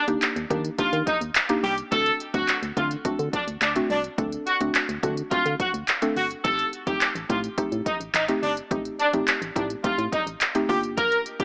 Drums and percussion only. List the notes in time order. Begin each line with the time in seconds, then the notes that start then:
0.08 closed hi-hat
0.22 clap, closed hi-hat
0.36 closed hi-hat
0.51 kick, closed hi-hat
0.65 closed hi-hat
0.79 kick, closed hi-hat
0.93 closed hi-hat
1.07 kick, closed hi-hat
1.21 closed hi-hat
1.35 clap, closed hi-hat
1.49 closed hi-hat
1.64 open hi-hat
1.78 closed hi-hat
1.92 kick, closed hi-hat
2.06 closed hi-hat
2.20 closed hi-hat
2.34 kick, closed hi-hat
2.48 clap, closed hi-hat
2.63 closed hi-hat
2.77 kick, closed hi-hat
2.91 closed hi-hat
3.05 kick, closed hi-hat
3.19 closed hi-hat
3.33 kick, closed hi-hat
3.48 closed hi-hat
3.62 clap, closed hi-hat
3.76 closed hi-hat
3.90 open hi-hat
4.04 closed hi-hat
4.18 kick, closed hi-hat
4.32 closed hi-hat
4.47 closed hi-hat
4.61 closed hi-hat
4.75 clap, closed hi-hat
4.89 closed hi-hat
5.03 kick, closed hi-hat
5.17 closed hi-hat
5.31 kick, closed hi-hat
5.46 closed hi-hat
5.60 kick, closed hi-hat
5.74 closed hi-hat
5.88 clap, closed hi-hat
6.02 closed hi-hat
6.16 open hi-hat
6.31 closed hi-hat
6.45 kick, closed hi-hat
6.59 closed hi-hat
6.73 closed hi-hat
6.87 kick, closed hi-hat
7.01 clap, closed hi-hat
7.16 closed hi-hat
7.30 kick, closed hi-hat
7.44 closed hi-hat
7.58 kick, closed hi-hat
7.72 closed hi-hat
7.86 kick, closed hi-hat
8.01 closed hi-hat
8.15 clap, closed hi-hat
8.28 closed hi-hat
8.43 open hi-hat
8.57 closed hi-hat
8.71 kick, closed hi-hat
8.85 closed hi-hat
8.99 closed hi-hat
9.13 closed hi-hat
9.28 clap, closed hi-hat
9.42 closed hi-hat
9.56 kick, closed hi-hat
9.70 closed hi-hat
9.84 kick, closed hi-hat
9.99 closed hi-hat
10.13 kick, closed hi-hat
10.27 closed hi-hat
10.41 clap, closed hi-hat
10.55 closed hi-hat
10.69 open hi-hat
10.83 closed hi-hat
10.98 kick, closed hi-hat
11.12 closed hi-hat
11.26 closed hi-hat
11.40 kick, closed hi-hat